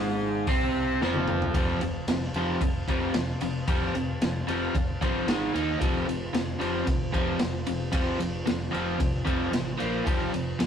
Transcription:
Already playing: picked electric bass G#1, overdriven electric guitar G#2 G#3, transistor combo organ C5 F5 A5
0.47 picked electric bass C2, overdriven electric guitar C3 C4, kick, open hi-hat
1.01 picked electric bass F1, overdriven electric guitar F2 F3, snare
1.14 high tom
1.27 mid tom
1.42 floor tom
1.50 transistor combo organ C5 F5
1.54 picked electric bass F1, overdriven electric guitar F2 C3 F3, transistor combo organ A5, kick, ride
1.81 picked electric bass F1, overdriven electric guitar F2 C3, ride
2.07 picked electric bass F1, overdriven electric guitar F2 C3, snare, ride
2.33 picked electric bass F1, overdriven electric guitar F2 C3, ride
2.38 overdriven electric guitar F3
2.61 picked electric bass F1, overdriven electric guitar F2 C3, kick, ride
2.88 picked electric bass F1, overdriven electric guitar F2 C3 F3, kick, ride
3.14 picked electric bass F1, overdriven electric guitar F2 C3, snare, ride
3.41 picked electric bass F1, overdriven electric guitar F2 C3, ride
3.67 picked electric bass F1, overdriven electric guitar F2 C3 F3, kick, ride
3.94 picked electric bass F1, overdriven electric guitar F2 C3, ride
4.21 picked electric bass F1, overdriven electric guitar F2 C3, snare, ride
4.47 picked electric bass F1, overdriven electric guitar F2 C3 F3, ride
4.75 picked electric bass F1, overdriven electric guitar F2 C3, kick, ride
5.01 picked electric bass G1, overdriven electric guitar F2 C3 F3, kick, ride
5.27 picked electric bass G#1, overdriven electric guitar G#2 D#3 G#3, snare, ride
5.54 picked electric bass D#2, overdriven electric guitar D#3 A#3 D#4, ride
5.79 picked electric bass F1, overdriven electric guitar F2 C3 F3, transistor combo organ F4 A4 C5, kick, ride
6.06 picked electric bass F1, overdriven electric guitar F2 C3, ride
6.33 picked electric bass F1, overdriven electric guitar F2 C3, snare, ride
6.59 picked electric bass F1, overdriven electric guitar F2 C3 F3, ride
6.86 picked electric bass F1, overdriven electric guitar F2 C3, kick, ride
7.13 picked electric bass F1, overdriven electric guitar F2 C3 F3, kick, ride
7.39 picked electric bass F1, overdriven electric guitar F2 C3, snare, ride
7.67 picked electric bass F1, overdriven electric guitar F2 C3, ride
7.92 picked electric bass F1, overdriven electric guitar F2 C3 F3, kick, ride
8.19 picked electric bass F1, overdriven electric guitar F2 C3, ride
8.46 picked electric bass F1, overdriven electric guitar F2 C3, snare, ride
8.71 picked electric bass F1, overdriven electric guitar F2 C3 F3, ride
8.99 picked electric bass F1, overdriven electric guitar F2 C3, kick, ride
9.25 picked electric bass F1, overdriven electric guitar F2 C3 F3, kick, ride
9.51 picked electric bass A1, overdriven electric guitar F2 C3, snare, ride
9.78 picked electric bass A#1, overdriven electric guitar A#2 F3 A#3, ride
10.04 picked electric bass F1, overdriven electric guitar F2 C3 F3, transistor combo organ F4 A4 C5, kick, ride
10.33 picked electric bass F1, overdriven electric guitar F2 C3, ride
10.59 picked electric bass F1, overdriven electric guitar F2 C3, snare, ride

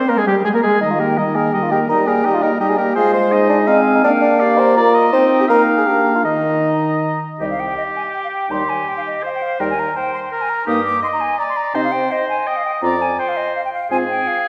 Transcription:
Already playing: french horn C4, bassoon C5, oboe C5, flute C5
0.09 clarinet A#3, french horn A#3, bassoon A#4, oboe A#4, flute A#4
0.17 clarinet G#3, french horn G#3, bassoon G#4, oboe G#4, flute G#4
0.27 clarinet G3, french horn G3, bassoon G4, oboe G4, flute G4
0.45 clarinet G#3, french horn G#3, bassoon G#4, oboe G#4, flute G#4
0.54 clarinet A#3, french horn A#3, bassoon A#4, oboe A#4, flute A#4
0.62 clarinet G#3, french horn G#3, oboe G#4, bassoon G#4, flute G#4
0.80 french horn D#3, clarinet G3, bassoon D#4, oboe D#5, flute A#5
0.90 bassoon F4
0.99 clarinet A#3, bassoon G4, oboe A#4, flute G5
1.17 french horn D#3, clarinet G3, bassoon D#4, oboe D#5, flute A#5
1.35 clarinet A#3, bassoon G#4, oboe A#4, flute G5
1.53 french horn D#3, clarinet G3, bassoon G4, oboe D#5, flute A#5
1.62 bassoon F4
1.71 clarinet A#3, bassoon G4, oboe A#4, flute G5
1.89 french horn G3, clarinet D#4, bassoon A#4, oboe D#5, flute A#5
2.07 clarinet A#3, bassoon G#4, oboe A#4, flute G5
2.24 french horn G3, clarinet D#4, bassoon G4, oboe D#5, flute A#5
2.34 bassoon F4
2.41 clarinet A#3, bassoon D#4, oboe A#4, flute G5
2.60 french horn G3, clarinet D#4, bassoon G4, oboe D#5, flute A#5
2.69 bassoon G#4
2.78 clarinet A#3, bassoon G4, oboe A#4, flute G5
2.95 french horn G#3, clarinet F4, bassoon G#4, oboe C5, flute F5
3.14 bassoon C5
3.31 clarinet D#4, oboe D#5, flute G#5
3.49 bassoon D4
3.67 clarinet C4, bassoon D#4, oboe F5, flute G#5
3.95 bassoon D#4
4.04 french horn A#3, bassoon D4, clarinet D4, oboe F5, flute G5
4.22 bassoon D4
4.40 clarinet G4, oboe D5, flute F5
4.58 bassoon C5, flute A#5
4.76 clarinet F4, bassoon A#4, oboe D5
4.94 oboe D#5
5.12 french horn C4, clarinet D#4, bassoon C5, flute G5
5.41 bassoon G4
5.48 french horn A#3, clarinet D#4, bassoon A#4, oboe F5, flute G5
5.77 bassoon G#4
5.87 french horn A#3, clarinet D4, bassoon G4, flute A#5
6.15 bassoon F4
6.25 french horn D#3, bassoon D#4, clarinet D#4, oboe D#5, flute A#5
7.40 bassoon C2, french horn G3, clarinet D#4, oboe G4, flute D#5
7.51 flute F5
7.60 flute G5
7.77 flute D#5
7.96 flute G#5
8.14 flute G5
8.24 flute F5
8.33 flute G5
8.50 bassoon D#2, french horn G3, clarinet D#4, oboe G4, flute C6
8.69 flute G#5
8.88 flute G5
8.97 flute F5
9.06 flute D#5
9.23 oboe C5, flute F5
9.35 flute G5
9.42 flute F5
9.60 bassoon D#2, french horn G3, clarinet D#4, oboe A#4, flute G5
9.70 flute G#5
9.79 flute A#5
9.96 oboe C5, flute G5
10.14 flute C6
10.31 oboe A#4, flute A#5
10.41 flute G#5
10.49 flute A#5
10.67 bassoon G2, french horn A#3, clarinet D#4, oboe G4, flute D#6
10.85 flute D6
11.02 oboe D#5, flute C6
11.13 flute A#5
11.21 flute G#5
11.39 oboe D5, flute A#5
11.49 flute C6
11.56 flute A#5
11.74 bassoon C3, french horn C4, clarinet D#4, oboe C5, flute D#5
11.84 flute F5
11.92 flute G5
12.11 oboe C5, flute D#5
12.29 flute G#5
12.47 oboe D#5, flute G5
12.56 flute F5
12.65 flute G5
12.82 bassoon F2, french horn C4, clarinet F4, oboe D5, flute A#5
13.02 flute G#5
13.19 oboe C5, flute G5
13.28 flute F5
13.37 flute D#5
13.55 flute F5
13.64 flute G5
13.73 flute F5
13.90 bassoon G#2, french horn C4, clarinet F4, oboe G#4, flute G#5
14.09 flute G5
14.27 flute F5

